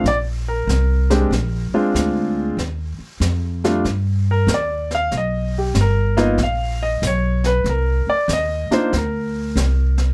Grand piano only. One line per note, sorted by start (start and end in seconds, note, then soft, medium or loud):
0.08 0.17 D5 medium
0.48 2.34 A#4 medium
1.10 1.30 G#3 medium
1.10 1.30 C4 medium
1.10 1.30 D4 medium
1.10 1.30 G4 medium
1.74 2.55 G#3 medium
1.74 2.55 C4 medium
1.74 2.55 D4 medium
1.74 2.55 F4 medium
3.64 3.83 G3 medium
3.64 3.84 A3 medium
3.64 3.84 D4 medium
3.64 3.84 F4 medium
4.31 4.50 A#4 medium
4.54 4.92 D5 medium
4.95 5.14 F5 medium
5.17 5.56 D#5 medium
5.58 5.77 G4 medium
5.81 6.19 A#4 medium
6.17 6.36 A#3 medium
6.17 6.37 B3 medium
6.17 6.37 D#4 medium
6.17 6.37 F4 medium
6.17 6.40 D#5 medium
6.43 6.82 F5 medium
6.83 7.03 D#5 medium
7.07 7.45 C#5 medium
7.46 7.66 B4 medium
7.69 8.08 A#4 medium
8.10 8.29 D5 medium
8.33 8.72 D#5 medium
8.71 8.91 A#3 medium
8.71 8.90 D4 medium
8.71 8.91 D#4 medium
8.71 8.91 F4 medium
8.71 8.93 C5 medium
8.97 10.14 A#4 medium